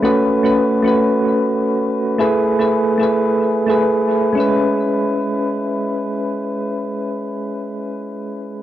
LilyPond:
\new Staff \with { instrumentName = "Synth keys" } { \time 4/4 \key e \major \tempo 4 = 111 <a cis' fis' b'>8. <a cis' fis' b'>8. <a cis' fis' b'>2~ <a cis' fis' b'>8 | <a e' gis' b'>8. <a e' gis' b'>8. <a e' gis' b'>4~ <a e' gis' b'>16 <a e' gis' b'>4~ <a e' gis' b'>16 | <gis cis' e' b'>1~ | <gis cis' e' b'>1 | }